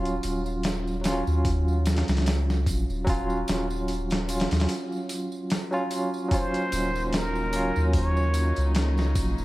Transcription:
0.00 0.20 D#1 medium
0.00 0.99 F#3 medium
0.00 1.00 C#4 medium
0.00 1.01 F4 medium
0.05 closed hi-hat soft
0.05 tambourine soft
0.23 1.23 D#1 medium
0.23 open hi-hat medium
0.23 tambourine medium
0.46 tambourine soft
0.63 snare loud
0.63 open hi-hat medium
0.63 tambourine soft
0.87 tambourine soft
1.02 3.01 F#3 medium
1.02 3.02 C#4 medium
1.02 open hi-hat medium
1.02 tambourine medium
1.06 3.04 F4 medium
1.06 snare loud
1.27 2.04 D#2 medium
1.27 tambourine soft
1.45 kick loud
1.45 open hi-hat medium
1.45 tambourine soft
1.68 tambourine soft
1.85 snare medium
1.85 open hi-hat medium
1.85 tambourine medium
1.96 snare medium
1.96 open hi-hat medium
2.08 2.68 C#2 medium
2.08 snare medium
2.08 open hi-hat medium
2.08 tambourine soft
2.17 snare medium
2.17 open hi-hat medium
2.26 snare loud
2.26 open hi-hat medium
2.26 tambourine soft
2.50 snare medium
2.50 tambourine soft
2.66 2.86 A#1 loud
2.66 kick medium
2.66 open hi-hat medium
2.66 tambourine medium
2.89 3.44 D#1 loud
2.89 tambourine soft
3.04 4.23 F#3 medium
3.04 4.24 C#4 medium
3.04 kick loud
3.04 open hi-hat medium
3.04 tambourine soft
3.10 4.25 F4 loud
3.30 tambourine soft
3.48 4.47 D#1 loud
3.48 snare loud
3.48 open hi-hat medium
3.48 tambourine medium
3.70 tambourine soft
3.88 open hi-hat medium
3.88 tambourine soft
4.10 snare medium
4.10 open hi-hat medium
4.10 tambourine soft
4.27 4.42 F#3 medium
4.27 4.42 C#4 medium
4.27 4.43 F4 medium
4.27 open hi-hat medium
4.27 tambourine medium
4.40 snare medium
4.40 open hi-hat medium
4.51 4.67 D#2 medium
4.51 snare medium
4.51 open hi-hat medium
4.51 tambourine soft
4.60 snare medium
4.60 open hi-hat medium
4.69 open hi-hat medium
4.69 tambourine medium
4.92 tambourine soft
5.09 open hi-hat medium
5.09 tambourine medium
5.32 tambourine soft
5.50 snare loud
5.50 open hi-hat medium
5.50 tambourine medium
5.71 6.26 F#3 medium
5.71 6.27 C#4 medium
5.71 6.27 F4 loud
5.71 tambourine soft
5.90 open hi-hat medium
5.90 tambourine medium
6.14 tambourine soft
6.29 9.45 C#3 medium
6.29 7.47 F#3 medium
6.29 9.45 F#3 medium
6.29 9.45 A#3 medium
6.29 7.49 C#4 medium
6.29 9.45 D#4 medium
6.29 kick loud
6.29 open hi-hat medium
6.29 tambourine medium
6.34 7.50 F4 medium
6.34 7.17 C5 loud
6.54 closed hi-hat soft
6.54 tambourine soft
6.72 7.71 D#1 medium
6.72 open hi-hat medium
6.72 tambourine loud
6.95 tambourine soft
7.13 7.95 A#4 medium
7.13 snare loud
7.13 open hi-hat medium
7.13 tambourine soft
7.35 tambourine soft
7.50 9.45 F#3 medium
7.50 9.45 C#4 medium
7.50 open hi-hat medium
7.50 tambourine medium
7.56 9.45 F4 medium
7.76 8.53 D#2 medium
7.76 tambourine soft
7.93 8.72 C#5 loud
7.93 kick loud
7.93 open hi-hat medium
7.93 tambourine soft
8.17 tambourine soft
8.34 open hi-hat medium
8.34 tambourine medium
8.56 9.17 C#2 loud
8.56 closed hi-hat soft
8.56 tambourine soft
8.75 snare loud
8.75 open hi-hat medium
8.75 tambourine soft
8.97 snare soft
8.97 tambourine soft
9.15 9.35 A#1 loud
9.15 kick medium
9.15 open hi-hat medium
9.15 tambourine medium
9.38 9.45 D#1 loud
9.38 tambourine soft

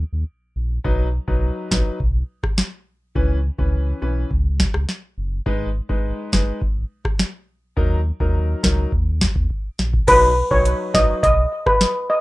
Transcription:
0.13 0.24 D#2 medium
0.56 0.79 A#1 medium
0.84 1.19 B1 loud
0.84 1.06 F#3 medium
0.84 1.06 D#4 medium
0.84 1.06 B4 loud
0.84 kick loud
1.28 1.51 B1 loud
1.28 1.68 F#3 medium
1.28 1.68 D#4 medium
1.28 1.68 B4 medium
1.28 kick medium
1.71 1.83 A#1 medium
1.71 1.98 F#3 medium
1.71 1.98 D#4 medium
1.71 1.98 B4 medium
1.71 kick medium
1.71 snare loud
2.00 2.23 B1 loud
2.00 kick loud
2.43 kick medium
2.43 cross-stick medium
2.58 snare loud
3.15 3.50 C#2 loud
3.15 3.37 E3 medium
3.15 3.37 C#4 medium
3.15 3.37 B4 loud
3.15 kick loud
3.58 3.93 C#2 medium
3.58 3.98 E3 medium
3.58 3.99 C#4 medium
3.58 3.99 B4 medium
3.58 kick medium
4.02 4.25 B1 medium
4.02 4.28 E3 medium
4.02 4.29 C#4 medium
4.02 4.29 B4 medium
4.31 4.66 C#2 loud
4.31 kick loud
4.60 kick medium
4.60 snare loud
4.74 4.86 C#2 medium
4.74 cross-stick loud
4.89 snare medium
5.18 5.41 F#1 medium
5.46 5.81 G#1 loud
5.46 5.67 G#3 medium
5.46 5.68 D#4 medium
5.46 5.68 B4 loud
5.46 kick loud
5.89 6.13 G#1 medium
5.89 6.29 G#3 medium
5.89 6.29 D#4 medium
5.89 6.29 B4 medium
5.89 kick medium
6.33 6.44 F#1 medium
6.33 6.59 G#3 medium
6.33 6.59 D#4 medium
6.33 6.60 B4 medium
6.33 kick medium
6.33 snare loud
6.62 6.85 G#1 loud
6.62 kick loud
7.05 kick medium
7.05 cross-stick loud
7.19 snare loud
7.77 8.12 D#2 loud
7.77 7.98 F#3 medium
7.77 7.98 D#4 medium
7.77 7.98 A#4 medium
7.77 kick loud
8.20 8.55 D#2 medium
8.20 8.60 F#3 medium
8.20 8.60 D#4 medium
8.20 8.60 A#4 medium
8.20 kick medium
8.63 8.87 C#2 medium
8.63 8.90 F#3 medium
8.63 8.90 D#4 medium
8.63 8.90 A#4 medium
8.63 kick loud
8.63 snare loud
8.92 9.27 D#2 loud
8.92 kick loud
9.21 kick medium
9.21 snare loud
9.36 9.47 D#2 medium
9.36 kick medium
9.50 kick medium
9.79 10.02 A#1 medium
9.79 snare medium
9.93 kick medium
10.07 10.43 B1 loud
10.07 10.29 F#3 medium
10.07 10.29 D#4 medium
10.07 10.29 B4 loud
10.07 10.20 B4 loud
10.07 kick loud
10.07 closed hi-hat medium
10.07 crash loud
10.51 10.74 B1 loud
10.51 10.91 F#3 medium
10.51 10.91 D#4 medium
10.51 10.91 B4 medium
10.51 10.63 C#5 medium
10.51 kick medium
10.65 closed hi-hat medium
10.94 11.06 A#1 loud
10.94 11.21 F#3 medium
10.94 11.21 D#4 medium
10.94 11.21 B4 medium
10.94 11.06 D#5 medium
10.94 kick loud
10.94 snare loud
11.23 11.46 B1 loud
11.23 11.35 D#5 medium
11.23 kick loud
11.23 closed hi-hat medium
11.66 11.78 B4 medium
11.66 kick loud
11.66 cross-stick loud
11.81 snare loud
11.81 closed hi-hat medium
12.10 12.21 D#5 medium

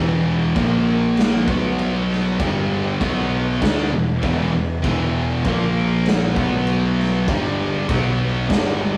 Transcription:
0.00 0.52 E1 loud
0.00 0.56 E2 medium
0.00 0.57 B2 medium
0.00 0.58 E3 loud
0.00 0.54 E4 medium
0.00 0.53 B4 medium
0.00 0.53 F#5 medium
0.55 1.43 A#1 loud
0.55 1.48 A#2 medium
0.55 1.48 F3 loud
0.55 1.47 A#3 medium
0.55 1.47 F4 medium
0.55 1.47 C5 medium
0.55 kick loud
0.55 crash medium
0.59 1.48 A#3 medium
1.17 snare loud
1.17 crash medium
1.47 2.35 B1 loud
1.47 2.39 B2 medium
1.47 2.40 F#3 medium
1.47 2.39 B3 medium
1.47 2.40 B3 medium
1.47 2.39 F#4 medium
1.47 2.39 B4 medium
1.47 kick loud
1.79 crash medium
2.12 snare soft
2.39 2.97 G1 loud
2.39 3.00 G2 medium
2.39 3.00 D3 medium
2.39 3.00 G3 medium
2.39 3.01 G3 loud
2.39 3.00 D4 medium
2.39 3.00 A4 medium
2.39 kick loud
2.39 crash medium
3.00 3.58 B1 loud
3.00 3.61 B2 medium
3.00 3.62 F#3 medium
3.00 3.61 B3 medium
3.00 3.62 B3 loud
3.00 3.61 F#4 medium
3.00 5.42 B4 medium
3.00 kick loud
3.00 crash medium
3.62 3.90 D2 medium
3.62 3.92 D3 medium
3.62 3.92 A3 loud
3.62 3.92 D4 loud
3.62 5.43 E4 medium
3.62 5.43 F#5 medium
3.62 kick loud
3.62 snare loud
3.62 crash medium
3.91 4.20 E1 medium
3.91 4.17 E2 medium
3.91 4.18 B2 medium
4.23 4.51 E1 loud
4.23 4.53 E2 medium
4.23 4.53 B2 loud
4.23 4.54 E3 loud
4.23 kick loud
4.23 crash medium
4.53 4.81 E1 medium
4.53 4.78 E2 medium
4.53 4.78 B2 medium
4.84 5.41 E1 loud
4.84 5.44 E2 medium
4.84 5.45 B2 loud
4.84 5.45 E3 loud
4.84 kick loud
4.84 crash medium
5.43 6.32 A#1 loud
5.43 6.36 A#2 loud
5.43 6.36 F3 medium
5.43 6.34 A#3 medium
5.43 6.35 F4 medium
5.43 6.34 C5 medium
5.43 kick loud
5.43 crash medium
5.47 6.37 A#3 medium
6.06 snare loud
6.06 crash medium
6.36 7.24 B1 loud
6.36 7.27 B2 medium
6.36 7.27 F#3 loud
6.36 7.27 B3 medium
6.36 7.28 B3 loud
6.36 7.27 F#4 medium
6.36 7.27 B4 medium
6.36 kick loud
6.67 crash medium
7.00 snare soft
7.27 7.85 G1 loud
7.27 7.87 G2 loud
7.27 7.88 D3 medium
7.27 7.88 G3 loud
7.27 7.89 G3 medium
7.27 7.89 D4 medium
7.27 7.89 A4 medium
7.27 kick loud
7.27 crash medium
7.87 8.46 B1 loud
7.87 8.49 B2 medium
7.87 8.49 F#3 medium
7.87 8.48 B3 medium
7.87 8.50 B3 loud
7.87 8.49 F#4 medium
7.87 8.48 B4 medium
7.87 kick loud
7.87 crash medium
8.49 8.97 G1 loud
8.49 8.97 G2 medium
8.49 8.97 D3 loud
8.49 8.97 G3 medium
8.49 8.97 G3 loud
8.49 8.97 D4 medium
8.49 8.97 A4 medium
8.49 kick loud
8.49 snare loud
8.49 crash medium

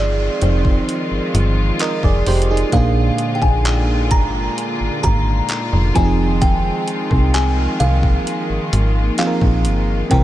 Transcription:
0.00 0.29 G1 medium
0.00 2.69 D#3 medium
0.00 2.68 F3 medium
0.00 5.92 G#3 medium
0.00 2.69 C4 medium
0.00 1.77 D#4 medium
0.00 10.07 F4 medium
0.00 1.81 G#4 medium
0.00 0.44 D5 medium
0.42 0.80 F1 loud
0.42 1.31 C5 medium
0.42 closed hi-hat medium
0.65 kick medium
0.89 closed hi-hat medium
1.11 1.20 G1 soft
1.34 1.72 G1 medium
1.34 closed hi-hat medium
1.79 2.03 A#4 medium
1.79 2.03 D#5 medium
1.79 clap loud
1.79 closed hi-hat medium
2.03 2.22 F1 medium
2.03 2.26 G#4 medium
2.03 2.26 D5 medium
2.03 kick medium
2.26 2.64 F1 medium
2.26 2.49 G4 medium
2.26 2.49 C5 medium
2.26 closed hi-hat medium
2.26 open hi-hat medium
2.42 closed hi-hat medium
2.51 2.94 D#4 medium
2.51 2.75 G#4 medium
2.57 closed hi-hat medium
2.72 3.10 A#1 loud
2.72 5.91 A#2 medium
2.72 5.92 D3 medium
2.72 5.92 A#3 medium
2.72 5.92 D4 medium
2.72 3.37 F5 loud
2.72 kick loud
2.72 closed hi-hat medium
2.76 5.93 G#4 medium
3.18 closed hi-hat medium
3.35 3.42 G5 medium
3.42 4.13 A#1 medium
3.42 4.13 G#5 loud
3.42 kick medium
3.65 clap loud
3.65 closed hi-hat medium
4.11 4.49 G1 loud
4.11 5.02 A#5 loud
4.11 kick loud
4.11 closed hi-hat medium
4.58 closed hi-hat medium
4.80 4.90 G#1 soft
5.03 5.41 G#1 loud
5.03 5.92 A#5 loud
5.03 kick medium
5.03 closed hi-hat medium
5.49 clap loud
5.49 closed hi-hat medium
5.73 5.92 F1 loud
5.94 6.71 F1 loud
5.94 10.07 D#3 medium
5.94 9.14 F3 medium
5.94 10.07 G#3 medium
5.94 7.78 C4 medium
5.94 9.15 C4 medium
5.94 9.15 D#4 medium
5.94 6.43 G#5 loud
5.94 kick medium
5.94 closed hi-hat medium
5.98 6.03 G4 medium
6.05 9.19 G#4 medium
6.42 7.37 G5 loud
6.42 kick loud
6.42 closed hi-hat medium
6.88 closed hi-hat medium
7.11 7.68 C2 medium
7.11 kick medium
7.34 7.77 G#5 loud
7.34 clap loud
7.34 closed hi-hat medium
7.80 8.18 C2 loud
7.80 10.09 A#3 medium
7.80 9.17 F5 loud
7.80 closed hi-hat medium
8.03 kick medium
8.27 closed hi-hat medium
8.50 8.59 G#1 medium
8.73 9.10 G#1 medium
8.73 closed hi-hat medium
9.18 10.11 F3 medium
9.18 10.10 C4 soft
9.18 10.12 D#4 soft
9.18 9.26 G#4 soft
9.18 10.14 F5 medium
9.18 clap loud
9.18 closed hi-hat medium
9.27 10.12 A#4 medium
9.41 9.67 A#1 medium
9.41 kick medium
9.65 10.03 G1 medium
9.65 closed hi-hat medium
10.10 10.24 C2 loud
10.10 10.24 C3 medium
10.10 10.24 E3 medium
10.10 10.24 A#3 medium
10.10 10.24 C4 medium
10.10 10.24 G4 medium
10.10 10.24 A#4 medium
10.10 10.24 G5 loud
10.10 kick loud
10.10 closed hi-hat medium

